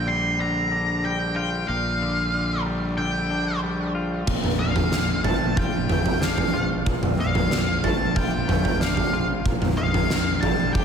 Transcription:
0.00 1.65 A#1 medium
0.00 1.68 A#2 medium
0.00 0.38 D3 soft
0.00 0.71 D4 soft
0.07 1.03 G3 soft
0.07 0.40 C6 medium
0.39 2.00 D3 medium
0.39 1.06 A#5 medium
0.71 2.33 D4 soft
1.04 2.65 G3 medium
1.04 1.35 G5 medium
1.36 2.98 F4 medium
1.36 1.68 G5 medium
1.68 4.24 A#1 medium
1.68 3.30 A#2 medium
1.68 2.62 F5 medium
2.02 2.33 D3 medium
2.34 2.97 D3 medium
2.66 3.62 G3 soft
2.98 4.28 D3 medium
2.98 3.59 G5 medium
3.31 4.28 D4 medium
3.63 4.28 G3 medium
3.95 4.27 F4 medium
4.27 6.82 A#1 medium
4.27 5.92 A#2 medium
4.27 kick medium
4.27 floor tom medium
4.27 crash medium
4.44 floor tom medium
4.44 mid tom medium
4.59 4.90 D3 medium
4.59 5.26 F5 medium
4.76 floor tom medium
4.76 mid tom medium
4.91 6.53 D3 soft
4.91 snare medium
5.24 5.88 A3 medium
5.24 5.58 A5 medium
5.24 floor tom medium
5.56 6.52 F4 medium
5.56 6.24 G5 medium
5.56 kick medium
5.56 floor tom medium
5.89 7.51 A3 soft
5.89 floor tom medium
5.89 mid tom medium
6.06 floor tom medium
6.21 7.83 D4 medium
6.21 6.68 F5 medium
6.21 snare medium
6.38 floor tom medium
6.54 8.15 F4 medium
6.86 9.41 A#1 medium
6.86 8.51 A#2 medium
6.86 kick medium
6.86 floor tom medium
7.03 floor tom medium
7.03 mid tom medium
7.18 7.50 D3 medium
7.18 7.86 F5 medium
7.35 floor tom medium
7.35 mid tom medium
7.51 9.13 D3 soft
7.51 snare medium
7.84 8.47 A3 soft
7.84 8.14 A5 medium
7.84 floor tom medium
8.16 9.12 F4 medium
8.16 8.83 G5 medium
8.16 kick medium
8.16 floor tom medium
8.48 9.45 A3 medium
8.48 floor tom medium
8.48 mid tom medium
8.65 floor tom medium
8.80 9.45 D4 medium
8.80 9.26 F5 medium
8.80 snare medium
8.97 floor tom medium
9.13 9.45 F4 medium
9.45 10.85 A#1 medium
9.45 10.85 A#2 medium
9.45 kick medium
9.45 floor tom medium
9.62 floor tom medium
9.62 mid tom medium
9.77 10.09 D#3 medium
9.77 10.44 F5 medium
9.94 floor tom medium
9.94 mid tom medium
10.10 10.85 D#3 medium
10.10 snare medium
10.41 10.85 G3 medium
10.41 10.73 A5 medium
10.41 floor tom medium
10.73 10.85 G4 medium
10.73 10.85 G5 medium
10.73 kick medium
10.73 floor tom medium

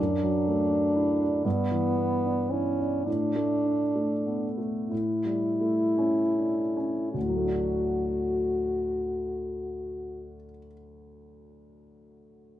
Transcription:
0.00 1.41 F#2 soft
0.00 1.45 D4 medium
0.23 0.61 F#3 soft
0.47 0.86 A3 soft
0.71 1.10 D4 soft
0.96 1.20 E4 soft
1.20 1.45 D4 soft
1.45 3.02 G2 soft
1.45 2.52 B3 medium
1.71 2.13 E3 soft
1.97 2.40 B3 soft
2.24 2.68 D4 soft
2.50 3.06 C#4 medium
2.50 2.79 E4 soft
2.79 3.07 D4 soft
3.06 4.87 A2 soft
3.06 4.49 D4 medium
3.35 3.82 A3 soft
3.65 4.13 D4 soft
3.95 4.45 A3 soft
4.26 4.58 B3 soft
4.58 4.91 A3 soft
4.90 7.11 A2 soft
4.90 7.10 E4 medium
5.25 5.83 G3 soft
5.61 6.21 A3 soft
5.98 6.61 C#4 soft
6.37 6.77 D4 soft
6.76 7.14 C#4 soft
7.12 10.35 D2 soft
7.12 10.34 F#4 soft
7.22 10.43 A2 soft
7.29 10.51 F#3 soft
7.37 10.58 A3 soft
7.44 10.66 D4 soft
7.52 10.74 F#4 soft

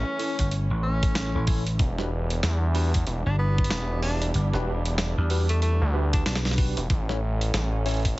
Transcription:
0.00 8.19 E3 medium
0.00 1.75 A3 medium
0.00 0.63 C#4 loud
0.00 1.75 C#4 medium
0.19 0.35 C#4 medium
0.19 0.35 E4 medium
0.19 0.35 A4 medium
0.19 0.35 C#5 medium
0.19 open hi-hat medium
0.39 0.68 G1 loud
0.39 kick medium
0.39 closed hi-hat medium
0.51 closed hi-hat medium
0.70 1.31 A1 medium
0.83 1.47 C#4 medium
1.03 1.30 C#4 medium
1.03 1.30 E4 medium
1.03 1.30 A4 medium
1.03 1.30 C#5 medium
1.03 kick loud
1.03 closed hi-hat medium
1.15 snare loud
1.15 closed hi-hat medium
1.35 1.77 A1 medium
1.35 1.44 C#4 medium
1.35 1.44 E4 medium
1.35 1.44 A4 medium
1.35 1.44 C#5 medium
1.47 1.63 C#4 medium
1.47 1.63 E4 medium
1.47 1.63 A4 medium
1.47 1.63 C#5 medium
1.47 kick loud
1.47 open hi-hat medium
1.67 closed hi-hat medium
1.79 2.41 E1 loud
1.79 6.86 G3 medium
1.79 6.86 B3 medium
1.79 6.86 D4 medium
1.79 kick loud
1.79 closed hi-hat medium
1.98 2.09 D4 medium
1.98 2.09 F#4 medium
1.98 2.09 G4 medium
1.98 2.09 B4 medium
1.98 snare soft
2.30 closed hi-hat medium
2.43 3.05 E2 medium
2.43 snare loud
2.43 closed hi-hat soft
2.75 2.91 D4 medium
2.75 2.91 F#4 medium
2.75 2.91 G4 medium
2.75 2.91 B4 medium
2.75 open hi-hat medium
2.94 kick medium
2.94 closed hi-hat medium
3.07 3.23 E1 loud
3.07 closed hi-hat medium
3.26 3.69 G1 loud
3.26 3.36 D4 medium
3.39 4.00 B3 medium
3.58 kick loud
3.64 closed hi-hat medium
3.71 4.33 E1 loud
3.71 snare loud
3.71 closed hi-hat soft
4.03 4.28 D4 medium
4.03 open hi-hat medium
4.22 closed hi-hat medium
4.34 4.51 G1 loud
4.34 closed hi-hat medium
4.54 5.15 E1 loud
4.54 4.72 D4 medium
4.54 4.72 F#4 medium
4.54 4.72 G4 medium
4.54 4.72 B4 loud
4.54 snare soft
4.86 closed hi-hat medium
4.98 snare loud
4.98 closed hi-hat medium
5.17 5.78 E2 loud
5.30 5.46 D4 medium
5.30 5.46 F#4 medium
5.30 5.46 G4 medium
5.30 5.46 B4 medium
5.30 open hi-hat medium
5.49 5.60 A3 medium
5.49 closed hi-hat medium
5.62 5.88 A3 medium
5.62 closed hi-hat medium
5.82 6.24 D2 loud
5.94 6.55 D4 medium
5.94 6.55 F#4 medium
5.94 6.55 G4 medium
5.94 6.55 B4 loud
6.13 6.22 D4 medium
6.13 kick loud
6.13 closed hi-hat medium
6.26 6.74 B1 loud
6.26 6.38 D4 medium
6.26 snare loud
6.26 closed hi-hat soft
6.35 snare medium
6.45 snare medium
6.51 snare medium
6.58 6.81 D4 medium
6.58 6.81 F#4 medium
6.58 6.81 G4 medium
6.58 6.81 B4 medium
6.58 kick loud
6.58 open hi-hat medium
6.77 6.88 E1 medium
6.77 closed hi-hat medium
6.90 7.52 A1 loud
6.90 8.19 A3 medium
6.90 8.19 C#4 medium
6.90 kick loud
6.90 closed hi-hat medium
7.09 7.19 C#4 medium
7.09 7.19 E4 medium
7.09 7.19 A4 medium
7.09 7.19 C#5 medium
7.09 snare soft
7.41 closed hi-hat medium
7.54 8.16 A1 medium
7.54 snare loud
7.54 closed hi-hat medium
7.86 8.01 C#4 medium
7.86 8.01 E4 medium
7.86 8.01 A4 medium
7.86 8.01 C#5 loud
7.86 open hi-hat medium
7.89 open hi-hat medium
7.91 open hi-hat soft
7.94 open hi-hat soft
7.97 open hi-hat soft
8.00 open hi-hat soft
8.03 kick medium
8.03 closed hi-hat medium
8.03 open hi-hat soft

